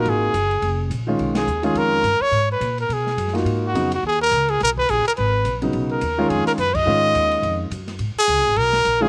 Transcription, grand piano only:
X:1
M:4/4
L:1/8
Q:"Swing" 1/4=211
K:G#dor
V:1 name="Grand piano"
[A,DEF]2 z4 z [D,G,CE]- | [D,G,CE]2 z [D,G,CE]3 z2 | z6 z [A,DEF]- | [A,DEF]2 [C,F,B,D] z4 z |
z6 z [C,F,B,D]- | [C,F,B,D]2 z [D,G,CE]3 z2 | [D,G,CE]4- [D,G,CE] z3 | z6 z [D,G,CE] |]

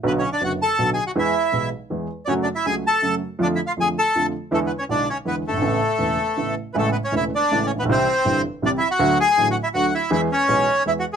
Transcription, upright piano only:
X:1
M:3/4
L:1/16
Q:1/4=161
K:A
V:1 name="Upright piano" clef=bass
[B,,,B,,D,F,B,F]2 z2 [F,,,F,,D,F,B,F]2 z2 [B,,,B,,D,F,B,F]2 z2 | [E,,E,G,B,G]2 z2 [B,,,B,,E,G,B,G]2 z2 [E,,E,G,B,G]2 z2 | [F,,C,F,A,F]2 z2 [C,,C,F,A,F]2 z2 [F,,C,F,A,F]2 z2 | [=F,,D,=F,A,=F]2 z2 [F,,D,F,A,F]2 z2 [F,,D,F,A,F]2 z2 |
[E,,D,E,G,B,E]2 z2 [B,,,B,,D,G,B,E]2 z2 [E,,D,E,G,B,E]2 z/2 F,,,/2 =G,,,/2 ^G,,,/2 | [A,,,A,,C,A,B,E]2 z2 [E,,,E,,C,A,B,E]2 z2 [A,,,A,,C,A,B,E]2 z2 | [A,,,A,,C,G,A,E]2 z2 [E,,,E,,C,G,A,E]2 z2 [A,,,A,,C,G,A,E]2 z/2 A,,,/2 _B,,,/2 =B,,,/2 | [=C,,=C,E,=G,E]2 z2 [=G,,,=G,,C,E,G,E]2 z2 [C,,C,E,G,E]2 z2 |
[D,,D,F,A,F]2 z2 [A,,,A,,D,F,A,F]2 z2 [D,,D,F,A,F]2 z2 | [E,,E,G,B,G]2 z2 [B,,,B,,E,G,B,G]2 z2 [E,,E,G,B,G]2 z2 |]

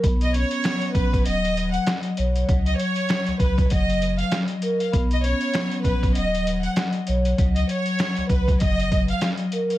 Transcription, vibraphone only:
X:1
M:4/4
L:1/8
Q:"Swing 16ths" 1/4=98
K:Cblyd
V:1 name="Vibraphone" clef=bass
=B, ^C ^F,2 G, G,2 d | G, G, G, G, G, G,2 B | =B, ^C ^F,2 G, G,2 d | G, G, G, G, G, G,2 B |]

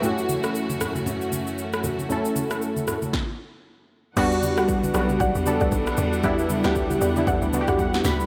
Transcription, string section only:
X:1
M:4/4
L:1/8
Q:"Swing 16ths" 1/4=116
K:Edor
V:1 name="String section"
[F,,E,A,CF]8- | [F,,E,A,CF]4 z4 | [E,G,B,Df]8- | [E,G,B,Df]8 |]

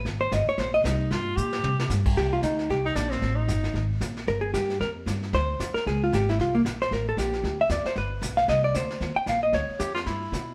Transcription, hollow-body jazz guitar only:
X:1
M:4/4
L:1/8
Q:"Swing" 1/4=228
K:Cphr
V:1 name="Hollow-body jazz guitar"
z c e d c e z2 | z8 | [K:Cm] G F E2 G z3 | z8 |
B A G2 B z3 | c3 B A F G =E | F B, z c B =A G2- | G =e d c =B3 f |
e d c3 g f e | ^c3 z4 z |]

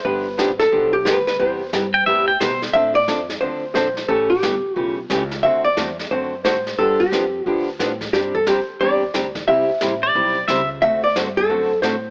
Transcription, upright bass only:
X:1
M:4/4
L:1/8
Q:"Swing" 1/4=178
K:Ddor
V:1 name="Upright bass" clef=bass
G,,,2 A,,,2 B,,,2 D,,2 | E,,2 G,,2 A,,2 B,,2 | A,,2 F,,2 D,,2 _B,,,2 | A,,,2 G,,, z B,,,2 ^C,,2 |
D,,2 E,,2 ^F,,2 A,,2 | G,,2 F,,2 D,,2 A,,2 | G,,2 F,, z E,,2 D,,2 | C,, z A,,,2 B,,,2 _D,,2 |
D,,2 G,,2 ^F,,2 A,,2 |]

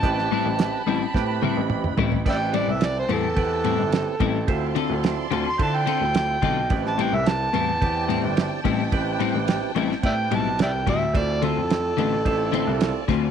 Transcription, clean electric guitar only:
X:1
M:4/4
L:1/8
Q:1/4=108
K:Am
V:1 name="Clean electric guitar"
z [A,,G,CE] z [A,,G,CE] z [A,,G,CE] z [A,,G,CE] | z [A,,G,CE] z [A,,G,CE] z [A,,G,CE] z [A,,G,CE] | z [D,CFA] z [D,CFA] z [D,CFA] z [D,CFA] | z [A,,G,CE] z [A,,G,CE] z [A,,G,CE] z [A,,G,CE] |
z [A,,G,CE] z [A,,G,CE] z [A,,G,CE] z [A,,G,CE] | z [D,A,CF] z [D,A,CF] z [D,A,CF] z [D,A,CF] |]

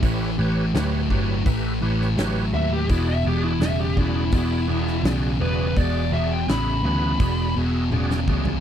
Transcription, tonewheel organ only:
X:1
M:4/4
L:1/8
Q:1/4=84
K:Emix
V:1 name="Tonewheel organ"
[=GBc] [GBc] [GBc] [GBc] [GBe] [GBc] [GBc] [GBe] | [FGd] [FGd] [FGd] [FGd] [FGd] [FGd] [FGd] [FGd] | [FGd] [FGd] [FGe] [FGB] [FGd] [FGe] [FGd] [FGd] |]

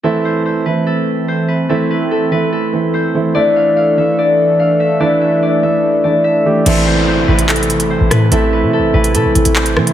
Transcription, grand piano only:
X:1
M:4/4
L:1/8
Q:1/4=145
K:Am
V:1 name="Grand piano"
[E,A,CE]2 z [E,A,CE]3 z2 | [E,A,CE]2 z [E,A,CE] z [E,A,CE] z [E,A,CE] | [E,A,DE]2 z [E,A,DE]3 z2 | [E,A,DE]2 z [E,A,DE] z [E,A,DE] z [E,A,DG] |
[E,A,CE]2 z [E,A,CE]3 z2 | [E,A,CE]2 z [E,A,CE] z [E,A,CE] z [E,A,CE] |]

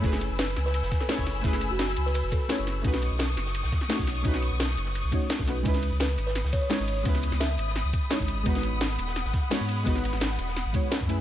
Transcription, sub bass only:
X:1
M:4/4
L:1/16
Q:1/4=171
K:C#m
V:1 name="Sub bass" clef=bass
F,,,3 F,,,3 C,,3 F,,, z3 F,,,3 | F,,,3 F,,,3 C,,3 F,,, z3 F,,,3 | B,,,3 B,,,3 F,,,3 B,,, z3 B,,,3 | B,,,3 B,,,3 F,,,3 B,,, z3 B,,,3 |
C,,3 C,,3 G,,,3 C,, z3 G,,,3 | C,,3 C,,3 G,,,3 C,, z3 G,,,3 | G,,,3 G,,,3 D,,,3 G,,, z3 G,,3 | G,,,3 G,,,3 D,,,3 G,,, z3 F,,3 |]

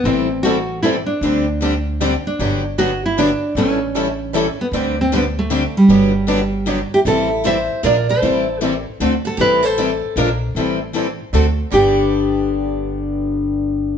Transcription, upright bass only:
X:1
M:3/4
L:1/8
Q:"Swing" 1/4=154
K:G
V:1 name="Upright bass" clef=bass
A,,,6 | D,,6 | G,,,6 | A,,,6 |
D,,6 | G,,,6 | A,,,4 _B,,,2 | A,,,4 D,,2 |
A,,,4 _B,,,2 | A,,,4 D,,2 | G,,,6- | G,,,6 |]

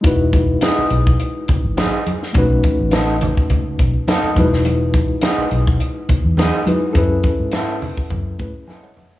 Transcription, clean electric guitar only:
X:1
M:4/4
L:1/8
Q:"Swing 16ths" 1/4=104
K:E
V:1 name="Clean electric guitar"
z2 [B,DG] z3 [B,DG] z | z2 [B,DA] z3 [B,DA] z | z2 [B,DG] z3 [B,DG] z | z2 [B,EA] z3 [B,EA] [B,EA] |]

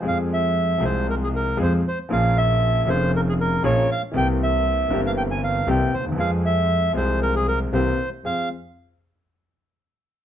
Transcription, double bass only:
X:1
M:4/4
L:1/8
Q:1/4=117
K:Fm
V:1 name="Double bass" clef=bass
F,,3 C,,3 F,, z | B,,,3 F,,,3 B,,, z | C,,3 G,,,3 C,, E,, | F,,3 C,,3 C,, z |
F,, z6 z |]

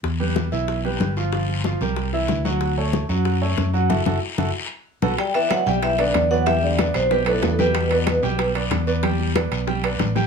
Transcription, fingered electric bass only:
X:1
M:4/4
L:1/8
Q:1/4=187
K:Em
V:1 name="Fingered electric bass" clef=bass
E,,3 B,,,3 G,,,2- | G,,,3 C,,3 D,,2- | D,,3 F,,3 F,,2 | F,,, F,,, z F,,, z3 B,,, |
z3 B,,,3 E,,2- | E,,3 B,,,3 E,,2- | E,,3 B,,,3 E,,2- | E,,3 B,,,3 A,,,2 |]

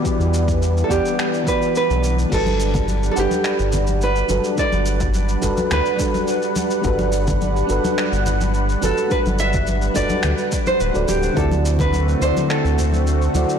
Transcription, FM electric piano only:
X:1
M:4/4
L:1/16
Q:1/4=106
K:G
V:1 name="FM electric piano"
[E,B,FGd]6 [E,B,Gdf]4 [E,B,FGd]6 | [G,DFAB]6 [G,DABf]8 [G,DFAB]2 | [G,DFAB]6 [G,DFAB]4 [G,DFAB]6 | [G,DFAB]6 [G,DFAB]8 [G,DFAB]2 |
[G,DFAB]6 [G,DFAB]4 z3 [G,DFAd] z2 | [D,CEFd]6 [D,CEFd]8 [D,CEFd]2 |]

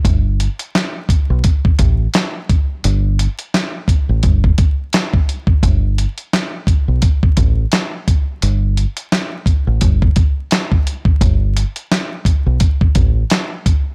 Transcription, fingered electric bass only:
X:1
M:4/4
L:1/16
Q:"Swing 16ths" 1/4=86
K:G
V:1 name="Fingered electric bass" clef=bass
G,,,3 z4 B,,, z2 A,,,2 z4 | G,,,3 z4 A,,, G,,,2 z6 | G,,,3 z4 B,,, z2 A,,,2 z4 | G,,,3 z4 A,,, G,,,2 z6 |
G,,,3 z4 B,,, z2 A,,,2 z4 |]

